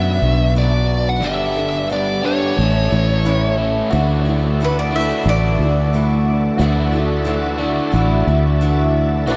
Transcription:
Already playing: fingered electric bass F#2, overdriven electric guitar B2 F#3 B3 D4 F#4, steel-string acoustic guitar F#3 B3 D4 F#4, lead electric guitar E5
0.22 fingered electric bass B1, steel-string acoustic guitar B3 D4 F#4
0.55 steel-string acoustic guitar B2 F#3 B3 D4 F#4, lead electric guitar D5
1.09 lead electric guitar F#5
1.21 fingered electric bass G1, overdriven electric guitar G2 D3 G3 B3 D4 G4, steel-string acoustic guitar G3 B3 D4 A4, lead electric guitar E5
1.56 steel-string acoustic guitar B3 D4 A4
1.90 steel-string acoustic guitar G3 B3 D4 A4, lead electric guitar D5
2.22 overdriven electric guitar G2 D3 G3 B3 D4 G4, steel-string acoustic guitar A4
2.26 steel-string acoustic guitar B3 D4, lead electric guitar C#5
2.56 fingered electric bass A1, overdriven electric guitar A2 E3 A3 C#4 A4, steel-string acoustic guitar A3 C#4
2.61 steel-string acoustic guitar E4 A4
2.92 fingered electric bass A1, steel-string acoustic guitar A3 C#4 E4 A4
3.25 steel-string acoustic guitar A2 E3 A3 C#4 E4 A4
3.57 overdriven electric guitar A2 E3 A3 C#4 A4
3.89 fingered electric bass D2, overdriven electric guitar D3 A3 D4, steel-string acoustic guitar D3 E3 A3 E4 F#4, tonewheel organ E4 F#4 A4 D5, upright piano F#4 D5
3.93 overdriven electric guitar F#4, upright piano E5
4.25 steel-string acoustic guitar A3 E4 F#4
4.60 steel-string acoustic guitar D3 E3 A3 E4 F#4
4.64 mandolin B4
4.79 mandolin D5
4.91 overdriven electric guitar D3 A3 D4 F#4, steel-string acoustic guitar E4 F#4
4.96 steel-string acoustic guitar A3, mandolin E5
5.26 fingered electric bass A1, steel-string acoustic guitar E3 A3 E4 F#4, mandolin D5
5.59 fingered electric bass D2, steel-string acoustic guitar E4 F#4
5.63 steel-string acoustic guitar A3
5.93 steel-string acoustic guitar D3 E3 A3 E4 F#4
6.57 fingered electric bass D2, overdriven electric guitar D3 A3 D4, steel-string acoustic guitar D3 E3 A3 E4, upright piano F#4 D5 E5
6.61 overdriven electric guitar F#4, tonewheel organ F#4 A4 D5 E5, steel-string acoustic guitar F#4
6.92 steel-string acoustic guitar A3 E4 F#4
7.24 steel-string acoustic guitar D3 E3 A3 E4 F#4
7.59 overdriven electric guitar D3 A3 D4 F#4, steel-string acoustic guitar A3 E4 F#4
7.92 fingered electric bass A1, steel-string acoustic guitar E3 A3 E4 F#4
8.27 fingered electric bass D2, steel-string acoustic guitar A3 E4 F#4
8.61 steel-string acoustic guitar D3 E3 A3 E4 F#4
9.26 fingered electric bass B1, overdriven electric guitar B2 F#3 B3 D4 F#4, steel-string acoustic guitar B2 F#3 B3 D4 F#4, tonewheel organ D4 F#4 B4 D5, upright piano F#4 B4
9.31 upright piano D5

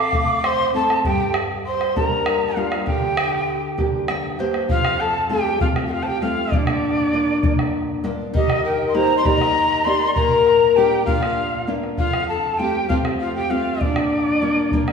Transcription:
Already playing: nylon-string guitar C3, pan flute F5, quena D6
0.13 nylon-string guitar A3 C4 F4, bombo rim, bombo low
0.44 pan flute C5, quena C6, bombo rim
0.60 bombo rim
0.74 nylon-string guitar A3 C4 F4, pan flute A4, quena A5
0.90 bombo rim
1.04 nylon-string guitar G2, pan flute G4, quena G5, bombo low
1.34 bombo rim
1.65 pan flute C5, quena C6, bombo rim
1.81 bombo rim
1.96 nylon-string guitar A#3 D4 G4, pan flute A#4, quena A#5, bombo rim, bombo low
2.26 bombo rim
2.42 bombo rim
2.56 nylon-string guitar A#3 D4 G4, pan flute F4, quena F5
2.72 bombo rim
2.86 nylon-string guitar D3, pan flute G4, quena G5, bombo rim, bombo low
3.02 bombo rim
3.17 bombo rim
3.47 bombo rim
3.78 nylon-string guitar A#3 D4 G4, bombo rim, bombo low
4.08 nylon-string guitar G5, bombo rim
4.24 bombo rim
4.39 nylon-string guitar A#3 D4 G4 C5
4.54 bombo rim
4.69 nylon-string guitar F2, pan flute F4, quena F5, bombo low
4.85 bombo rim
5.00 pan flute A4, quena A5
5.29 nylon-string guitar A3 C4 F4, pan flute G4, quena G5
5.60 nylon-string guitar A3 C4 F4, pan flute F4, quena F5, bombo low
5.76 bombo rim
5.87 pan flute A#4, quena G5
5.91 pan flute F4, quena F5
6.03 pan flute C5, quena A5
6.07 pan flute G4, quena G5
6.21 nylon-string guitar A3 C4 F4, pan flute F4, quena F5, bombo rim
6.52 nylon-string guitar A#2, pan flute D4, quena D5, bombo low
6.67 bombo rim
7.13 nylon-string guitar A#3 D4 F4
7.43 nylon-string guitar A#3 D4 F4, bombo low
7.59 bombo rim
8.04 nylon-string guitar A#3 D4 F4, bombo rim
8.34 nylon-string guitar D#3, pan flute G4, quena D#5, bombo low
8.50 bombo rim
8.64 pan flute A#4, quena G5
8.88 pan flute D#5, quena C6
8.94 nylon-string guitar A#3 D#4 G4, pan flute C5, quena A#5
9.17 pan flute D#5, quena C6
9.24 nylon-string guitar A#3 D#4 G4, pan flute D#5, quena A#5, bombo low
9.41 bombo rim
9.85 nylon-string guitar A#3 D#4 G4, pan flute D5, quena C6, bombo rim
10.14 nylon-string guitar A#2, pan flute A#4, quena A#5, bombo low
10.46 bombo rim
10.76 nylon-string guitar A#3 D4 F4, pan flute G4, quena G5
11.05 nylon-string guitar A#3 D4 F4, pan flute F4, quena F5, bombo rim, bombo low
11.23 bombo rim
11.67 nylon-string guitar A#3 D4 F4
11.84 bombo rim
11.98 nylon-string guitar F2, pan flute F4, quena F5, bombo low
12.13 bombo rim
12.28 pan flute A4, quena A5
12.58 nylon-string guitar A3 C4 F4, pan flute G4, quena G5
12.88 nylon-string guitar A3 C4 F4, pan flute F4, quena F5, bombo low
13.05 bombo rim
13.19 pan flute F4, quena F5
13.35 pan flute G4, quena G5
13.50 nylon-string guitar A3 C4 F4, pan flute F4, quena F5, bombo rim
13.80 nylon-string guitar A#2, pan flute D4, quena D5, bombo low
13.96 bombo rim
14.42 nylon-string guitar A#3 D4 F4
14.71 nylon-string guitar A#3 D4 F4, bombo low
14.88 bombo rim

